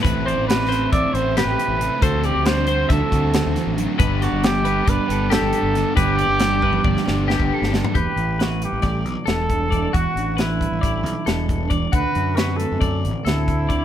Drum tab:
HH |x-x-x-x-x-x-x-x-x-|x-x-x-x-x-x-x-x-x-|x-x-x-x-x-x-x-x-x-|x-x-x-------------|
SD |----o-o-----o-----|----o---o---o-o---|--o-o-------o---o-|----o----oo-o--oo-|
T1 |------------------|------------------|------------------|-------o----------|
FT |------------------|------------------|------------------|-----------------o|
BD |o-------o---------|o-------o-o-------|o-------o---------|o-----o-o----o----|

HH |x-x-x-x-x-x-x-x-x-|x-x-x-x-x-x-x-x-x-|x-x-x-x-x-x-x-x-x-|
SD |----o---o---o-----|----o-------o-----|----o-------o-----|
T1 |------------------|------------------|------------------|
FT |------------------|------------------|------------------|
BD |o-------o-----o-o-|o-----o-o-----o-o-|o-------o-----o-o-|